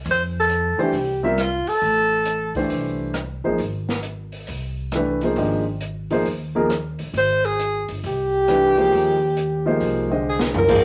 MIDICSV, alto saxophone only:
0, 0, Header, 1, 2, 480
1, 0, Start_track
1, 0, Tempo, 443131
1, 60, Time_signature, 4, 2, 24, 8
1, 11746, End_track
2, 0, Start_track
2, 0, Title_t, "Alto saxophone"
2, 0, Program_c, 0, 65
2, 116, Note_on_c, 0, 72, 100
2, 246, Note_off_c, 0, 72, 0
2, 431, Note_on_c, 0, 69, 90
2, 877, Note_on_c, 0, 67, 76
2, 893, Note_off_c, 0, 69, 0
2, 1347, Note_off_c, 0, 67, 0
2, 1507, Note_on_c, 0, 65, 87
2, 1823, Note_on_c, 0, 69, 116
2, 1840, Note_off_c, 0, 65, 0
2, 2780, Note_off_c, 0, 69, 0
2, 7774, Note_on_c, 0, 72, 110
2, 8070, Note_on_c, 0, 68, 93
2, 8086, Note_off_c, 0, 72, 0
2, 8544, Note_off_c, 0, 68, 0
2, 8737, Note_on_c, 0, 67, 110
2, 11074, Note_off_c, 0, 67, 0
2, 11148, Note_on_c, 0, 68, 77
2, 11279, Note_off_c, 0, 68, 0
2, 11463, Note_on_c, 0, 70, 96
2, 11746, Note_off_c, 0, 70, 0
2, 11746, End_track
0, 0, End_of_file